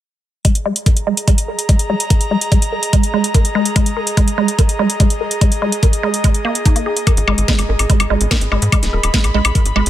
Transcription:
0.45 0.53 G#3 loud
0.45 9.90 G#4 medium
0.45 kick loud
0.45 closed hi-hat medium
0.55 closed hi-hat medium
0.66 0.69 G#3 loud
0.70 9.90 D#5 medium
0.75 8.13 A#5 medium
0.75 closed hi-hat medium
0.86 0.92 A#4 medium
0.86 kick loud
0.86 closed hi-hat medium
0.97 closed hi-hat medium
1.07 1.15 G#3 loud
1.17 closed hi-hat medium
1.28 1.31 G#3 loud
1.28 kick loud
1.28 closed hi-hat medium
1.38 closed hi-hat medium
1.48 1.54 A#4 medium
1.59 closed hi-hat medium
1.69 1.77 G#3 loud
1.69 kick loud
1.69 closed hi-hat medium
1.79 closed hi-hat medium
1.90 1.93 G#3 loud
2.00 closed hi-hat medium
2.10 2.16 A#4 medium
2.10 kick loud
2.10 closed hi-hat medium
2.21 closed hi-hat medium
2.31 2.39 G#3 loud
2.41 closed hi-hat medium
2.52 2.55 G#3 loud
2.52 kick loud
2.52 closed hi-hat medium
2.62 closed hi-hat medium
2.72 2.78 A#4 medium
2.83 closed hi-hat medium
2.93 3.01 G#3 loud
2.93 kick loud
2.93 closed hi-hat medium
3.03 closed hi-hat medium
3.14 3.17 G#3 loud
3.24 closed hi-hat medium
3.34 3.40 A#4 medium
3.34 kick loud
3.34 closed hi-hat medium
3.45 closed hi-hat medium
3.55 3.63 G#3 loud
3.65 closed hi-hat medium
3.76 3.79 G#3 loud
3.76 kick loud
3.76 closed hi-hat medium
3.86 closed hi-hat medium
3.97 4.02 A#4 medium
4.07 closed hi-hat medium
4.17 4.26 G#3 loud
4.17 kick loud
4.17 closed hi-hat medium
4.28 closed hi-hat medium
4.38 4.41 G#3 loud
4.48 closed hi-hat medium
4.59 4.64 A#4 medium
4.59 kick loud
4.59 closed hi-hat medium
4.69 closed hi-hat medium
4.79 4.88 G#3 loud
4.90 closed hi-hat medium
5.00 5.03 G#3 loud
5.00 kick loud
5.00 closed hi-hat medium
5.10 closed hi-hat medium
5.21 5.26 A#4 medium
5.31 closed hi-hat medium
5.41 5.50 G#3 loud
5.41 kick loud
5.41 closed hi-hat medium
5.52 closed hi-hat medium
5.62 5.65 G#3 loud
5.72 closed hi-hat medium
5.83 5.88 A#4 medium
5.83 kick loud
5.83 closed hi-hat medium
5.93 closed hi-hat medium
6.03 6.12 G#3 loud
6.14 closed hi-hat medium
6.24 6.27 G#3 loud
6.24 kick loud
6.24 closed hi-hat medium
6.34 closed hi-hat medium
6.45 6.50 A#3 loud
6.55 closed hi-hat medium
6.65 6.71 D#4 medium
6.65 kick loud
6.65 closed hi-hat medium
6.76 6.79 A#3 medium
6.76 closed hi-hat medium
6.86 6.92 G#4 medium
6.97 closed hi-hat medium
7.07 7.12 A#4 medium
7.07 kick loud
7.07 closed hi-hat medium
7.07 high woodblock soft
7.17 7.24 G#1 medium
7.17 closed hi-hat medium
7.28 7.34 G#1 loud
7.28 7.36 G#3 loud
7.28 high woodblock medium
7.38 7.45 G#1 medium
7.38 closed hi-hat medium
7.48 7.52 G#3 loud
7.48 kick loud
7.48 snare loud
7.48 closed hi-hat medium
7.59 7.65 G#1 medium
7.59 closed hi-hat medium
7.59 high woodblock soft
7.69 7.76 G#1 loud
7.69 7.74 A#4 medium
7.79 7.86 G#1 medium
7.79 closed hi-hat medium
7.79 high woodblock soft
7.90 7.98 G#3 loud
7.90 kick loud
7.90 closed hi-hat medium
8.00 8.07 G#1 medium
8.00 9.90 B5 medium
8.00 closed hi-hat medium
8.00 high woodblock medium
8.10 8.17 G#1 loud
8.10 8.14 G#3 loud
8.21 8.28 G#1 medium
8.21 closed hi-hat medium
8.31 8.37 A#4 medium
8.31 kick loud
8.31 snare loud
8.31 closed hi-hat medium
8.31 high woodblock soft
8.41 8.48 G#1 medium
8.41 closed hi-hat medium
8.52 8.59 G#1 loud
8.52 8.60 G#3 loud
8.52 high woodblock soft
8.62 8.69 G#2 medium
8.62 closed hi-hat medium
8.72 8.76 G#3 loud
8.72 kick loud
8.72 closed hi-hat medium
8.72 high woodblock medium
8.83 8.90 D#1 medium
8.83 snare soft
8.83 closed hi-hat medium
8.93 9.00 D#1 loud
8.93 8.99 A#4 medium
9.03 9.10 D#1 medium
9.03 closed hi-hat medium
9.03 high woodblock soft
9.14 9.22 G#3 loud
9.14 kick loud
9.14 snare loud
9.14 closed hi-hat medium
9.24 9.31 A#1 medium
9.24 closed hi-hat medium
9.24 high woodblock soft
9.34 9.41 A#1 loud
9.34 9.38 G#3 loud
9.45 9.52 A#1 medium
9.45 closed hi-hat medium
9.45 high woodblock medium
9.55 9.61 A#4 medium
9.55 kick loud
9.55 closed hi-hat medium
9.65 9.72 G#1 medium
9.65 closed hi-hat medium
9.76 9.83 G#1 loud
9.76 9.84 G#3 loud
9.76 high woodblock soft
9.86 9.90 G#1 medium
9.86 closed hi-hat medium

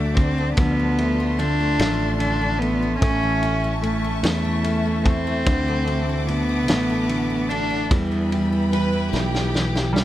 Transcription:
0.00 0.54 D2 medium
0.00 0.16 D3 medium
0.00 0.58 F#3 medium
0.00 0.16 A3 medium
0.00 0.38 A3 medium
0.00 0.17 D4 medium
0.00 0.56 F#4 medium
0.00 2.98 D5 medium
0.00 2.98 A5 medium
0.00 0.55 D6 medium
0.15 0.56 D3 medium
0.15 0.55 C4 medium
0.15 1.39 D4 medium
0.15 kick medium
0.15 ride soft
0.38 1.19 A3 medium
0.56 1.76 D2 medium
0.56 1.37 D3 medium
0.56 0.78 F3 medium
0.56 1.40 B3 loud
0.56 3.00 F4 medium
0.56 3.00 C6 medium
0.56 kick medium
0.56 ride medium
0.79 1.79 F3 medium
0.98 1.78 A3 medium
0.98 ride soft
1.20 1.60 A3 medium
1.38 2.19 D3 medium
1.38 2.20 C4 medium
1.38 2.18 D4 loud
1.38 ride soft
1.60 2.41 A3 medium
1.79 2.98 A1 medium
1.79 1.99 F3 medium
1.79 2.59 A3 medium
1.79 snare loud
1.79 ride medium
2.00 3.02 F3 medium
2.19 3.00 D3 medium
2.19 2.62 C4 medium
2.19 2.60 D4 medium
2.19 ride soft
2.41 2.82 A3 medium
2.59 3.00 A3 medium
2.59 2.99 B3 medium
2.59 ride soft
2.82 3.64 A3 medium
3.00 4.20 A1 loud
3.00 3.23 E3 medium
3.00 3.80 A3 medium
3.00 3.78 C#4 loud
3.00 10.04 E4 medium
3.00 5.44 E5 medium
3.00 5.45 A5 medium
3.00 5.45 C#6 medium
3.00 kick loud
3.00 ride medium
3.23 4.24 E3 medium
3.42 3.83 C#4 medium
3.42 4.22 E4 medium
3.42 ride soft
3.64 4.04 A3 medium
3.82 4.62 A3 medium
3.82 4.21 A3 medium
3.82 4.64 C#4 medium
3.82 ride soft
4.04 4.85 A3 medium
4.23 5.42 E2 medium
4.23 4.44 E3 medium
4.23 5.05 A3 medium
4.23 5.03 E4 medium
4.23 snare loud
4.23 ride medium
4.44 5.46 E3 medium
4.64 5.44 A3 medium
4.64 5.06 C#4 medium
4.64 ride soft
4.86 5.26 A3 medium
5.03 6.29 C4 loud
5.03 5.45 E4 medium
5.03 kick medium
5.03 ride soft
5.27 5.67 A3 medium
5.46 6.69 D2 loud
5.46 6.25 D3 medium
5.46 6.68 E3 medium
5.46 7.89 A4 medium
5.46 7.89 F#5 medium
5.46 7.89 D6 medium
5.46 kick loud
5.46 ride medium
5.68 6.88 A3 medium
5.86 6.66 A3 medium
5.86 6.28 F#4 medium
5.86 ride soft
6.09 6.48 D4 medium
6.27 7.07 D3 medium
6.27 7.51 B3 loud
6.27 7.08 F#4 medium
6.27 ride soft
6.49 7.29 D4 medium
6.68 7.87 A1 medium
6.68 7.91 E3 medium
6.68 7.49 A3 medium
6.68 snare loud
6.68 ride medium
6.90 8.00 A3 medium
7.09 7.88 D3 medium
7.09 7.49 F#4 medium
7.09 ride soft
7.30 7.69 D4 medium
7.49 7.90 A3 medium
7.49 7.92 D4 medium
7.49 7.99 F#4 medium
7.49 ride soft
7.70 7.99 D4 medium
7.91 9.10 E2 loud
7.91 8.30 E3 medium
7.91 9.12 E3 medium
7.91 9.54 G3 loud
7.91 10.04 B4 medium
7.91 10.04 G5 medium
7.91 10.04 B5 medium
7.91 kick medium
7.91 ride medium
8.12 9.34 B3 medium
8.32 8.70 E3 medium
8.32 8.73 G4 medium
8.32 ride soft
8.52 8.92 E4 medium
8.71 9.11 E3 medium
8.71 9.54 G4 medium
8.71 9.10 B4 loud
8.71 ride soft
8.93 9.74 E4 medium
9.12 10.04 B1 medium
9.12 9.52 E3 medium
9.12 10.04 E3 medium
9.12 10.04 G4 loud
9.12 snare medium
9.35 10.04 B3 medium
9.35 snare medium
9.54 9.93 E3 soft
9.54 9.95 G4 medium
9.54 snare medium
9.75 10.04 E4 medium
9.75 snare medium
9.93 10.04 E3 medium
9.93 10.04 G3 medium
9.93 10.04 G4 medium
9.93 snare loud

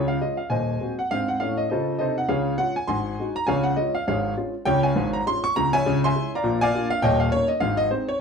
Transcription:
0.00 0.17 C#2 medium
0.00 0.17 C#3 medium
0.08 0.18 F5 medium
0.21 0.37 G#3 soft
0.21 0.38 C#4 soft
0.21 0.38 F4 soft
0.21 0.36 D#5 medium
0.37 0.48 F5 medium
0.50 0.76 D#1 medium
0.50 0.75 D#2 medium
0.50 0.95 C5 medium
0.50 0.95 D#5 medium
0.50 0.91 G#5 medium
0.81 0.97 G#3 soft
0.81 0.97 C4 soft
0.81 0.97 F#4 medium
0.99 1.08 F#5 medium
1.11 1.35 G#2 medium
1.11 1.36 C4 medium
1.11 1.26 F5 loud
1.28 1.38 F#5 medium
1.40 1.64 A2 medium
1.40 1.65 C#4 medium
1.40 1.55 F5 loud
1.57 1.67 D#5 medium
1.70 1.94 C#3 medium
1.70 1.95 F4 medium
1.70 1.98 A4 medium
1.70 1.98 C5 medium
1.70 1.95 D#5 medium
1.99 2.23 C3 medium
1.99 2.24 D#4 medium
1.99 2.16 A4 medium
1.99 2.16 C5 medium
1.99 2.14 D#5 medium
2.18 2.27 F#5 medium
2.28 2.54 C#2 medium
2.28 2.54 C#3 medium
2.28 2.56 G#4 medium
2.28 2.56 C#5 medium
2.28 2.54 F5 loud
2.58 2.75 G#3 soft
2.58 2.75 C#4 soft
2.58 2.75 F4 medium
2.58 2.73 F#5 loud
2.76 2.86 G#5 loud
2.87 3.13 G#1 medium
2.87 3.13 G#2 medium
2.87 3.32 F#5 medium
2.87 3.32 G#5 medium
2.87 3.28 C6 loud
3.20 3.35 G#3 soft
3.20 3.35 D#4 soft
3.20 3.35 F#4 medium
3.36 3.45 A#5 loud
3.47 3.72 C#2 medium
3.47 3.72 C#3 medium
3.47 3.64 C#5 loud
3.47 3.64 F5 medium
3.47 3.62 G#5 loud
3.63 3.74 F#5 loud
3.76 3.93 G#3 soft
3.76 3.94 C#4 medium
3.76 3.94 F4 medium
3.76 3.92 D#5 loud
3.95 4.04 F5 loud
4.07 4.32 G#1 medium
4.07 4.32 G#2 medium
4.07 4.35 G#4 medium
4.07 4.34 C#5 medium
4.07 4.32 F5 loud
4.37 4.53 G#3 soft
4.37 4.54 C#4 soft
4.37 4.53 F4 medium
4.65 4.89 C#2 loud
4.65 4.89 C#3 medium
4.65 4.83 C#5 loud
4.65 4.80 G5 loud
4.83 5.11 C#5 medium
4.83 5.11 F5 medium
4.83 5.08 G#5 loud
4.95 5.19 G#1 medium
4.95 5.19 G#2 medium
5.13 5.23 A#5 loud
5.27 5.42 G#3 medium
5.27 5.43 C#4 medium
5.27 5.43 F4 medium
5.27 5.41 C6 loud
5.44 5.53 C#6 loud
5.56 5.79 C#2 medium
5.56 5.79 C#3 medium
5.56 5.70 A#5 loud
5.73 6.02 C#5 loud
5.73 6.02 E5 medium
5.73 5.99 G#5 loud
5.86 6.10 C#2 medium
5.86 6.10 C#3 loud
6.04 6.32 E5 medium
6.04 6.32 G#5 loud
6.04 6.29 C6 loud
6.16 6.31 G#3 medium
6.16 6.32 E4 medium
6.35 6.60 D5 medium
6.35 6.60 F5 medium
6.35 6.58 A#5 loud
6.44 6.68 A#1 medium
6.44 6.68 A#2 loud
6.61 6.89 D5 loud
6.61 6.89 F5 loud
6.61 6.86 G#5 loud
6.74 6.90 A#3 medium
6.74 6.91 D4 soft
6.74 6.91 F4 medium
6.90 7.00 F5 loud
7.02 7.28 D#1 medium
7.02 7.27 D#2 loud
7.02 7.19 C#5 loud
7.02 7.20 D#5 loud
7.02 7.17 G5 loud
7.20 7.30 F5 loud
7.32 7.48 A#3 medium
7.32 7.49 C#4 medium
7.32 7.49 D#4 medium
7.32 7.47 C#5 loud
7.48 7.58 D#5 loud
7.60 7.86 G#1 medium
7.60 7.86 G#2 medium
7.60 7.76 F5 loud
7.77 7.88 D#5 loud
7.91 8.07 G#3 soft
7.91 8.07 C4 soft
7.91 8.08 D#4 soft
7.91 8.06 C5 medium
8.09 8.18 C#5 loud

